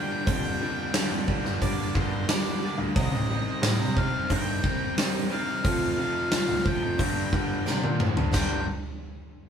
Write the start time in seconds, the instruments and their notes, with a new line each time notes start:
Already playing: distorted electric guitar G2 D3 G3 A#3 D4, twelve-string acoustic guitar G4, lead electric guitar G5
0.26 grand piano F2, distorted electric guitar G2 D3 G3 A#3 D4, twelve-string acoustic guitar G4, lead electric guitar G5, kick, open hi-hat, cowbell
0.60 distorted electric guitar G2 D3 G3 A#3 D4, twelve-string acoustic guitar G4
0.94 distorted electric guitar G2 D3 G3 A#3 D4, twelve-string acoustic guitar G4, snare, open hi-hat, cowbell
1.11 grand piano F2
1.27 distorted electric guitar G2 D3 G3 A#3 D4, twelve-string acoustic guitar G4, kick, cowbell
1.45 grand piano G2, snare
1.61 distorted electric guitar G2 D3 G3 A#3 D4, twelve-string acoustic guitar G4, lead electric guitar D5, kick, open hi-hat, cowbell
1.95 grand piano G2, distorted electric guitar G2 D3 G3 A#3 D4, twelve-string acoustic guitar G4, lead electric guitar C5, kick
2.28 distorted electric guitar G2 D3 G3 A#3 D4, twelve-string acoustic guitar G4, lead electric guitar D5, snare, open hi-hat, cowbell
2.62 distorted electric guitar G2 D3 G3 A#3 D4, twelve-string acoustic guitar G4
2.78 grand piano D2
2.96 grand piano C2, distorted electric guitar C3 G3 C4 D#4, twelve-string acoustic guitar G4, lead electric guitar D#5, kick, open hi-hat, cowbell
3.12 grand piano A1
3.29 distorted electric guitar C3 G3 C4 D#4, twelve-string acoustic guitar G4
3.62 grand piano A2, distorted electric guitar C3 G3 C4 D#4, twelve-string acoustic guitar G4, snare, open hi-hat, cowbell
3.78 grand piano C3
3.96 distorted electric guitar C3 G3 C4 D#4, twelve-string acoustic guitar G4, lead electric guitar F5, kick, cowbell
4.30 grand piano G2, distorted electric guitar C3 G3 C4 D#4, twelve-string acoustic guitar G4, lead electric guitar G5, kick, open hi-hat, cowbell
4.64 distorted electric guitar C3 G3 C4 D#4, twelve-string acoustic guitar G4, kick
4.97 distorted electric guitar C3 G3 C4 D#4, twelve-string acoustic guitar G4, snare, open hi-hat, cowbell
5.31 distorted electric guitar C3 G3 C4 D#4, twelve-string acoustic guitar G4, lead electric guitar F5, cowbell
5.64 grand piano F2, distorted electric guitar F2 C3 F3 A3 C4, twelve-string acoustic guitar F4 A4, kick, open hi-hat, cowbell
5.98 distorted electric guitar F2 C3 F3 A3 C4, twelve-string acoustic guitar F4 A4, lead electric guitar F5
6.31 distorted electric guitar F2 C3 F3 A3 C4, twelve-string acoustic guitar F4 A4, lead electric guitar F5, snare, open hi-hat, cowbell
6.48 grand piano D2
6.65 distorted electric guitar F2 C3 F3 A3 C4, twelve-string acoustic guitar F4 A4, lead electric guitar G5, kick, cowbell
6.82 grand piano F2
6.98 distorted electric guitar G2 D3 G3 A#3 D4, grand piano G2, twelve-string acoustic guitar G4, kick, open hi-hat, cowbell
7.32 grand piano G2, distorted electric guitar G2 D3 G3 A#3 D4, twelve-string acoustic guitar G4, kick
7.66 distorted electric guitar G2 D3 G3 A#3 D4, grand piano C3, twelve-string acoustic guitar G4, snare, cowbell
7.84 grand piano A#2, high tom
8.00 distorted electric guitar G2 D3 G3 A#3 D4, grand piano A2, twelve-string acoustic guitar G4, mid tom, cowbell
8.17 grand piano G2, floor tom
8.33 grand piano G1, distorted electric guitar G2 D3 G3 A#3 D4, twelve-string acoustic guitar G4, lead electric guitar G5, kick, snare, cowbell, crash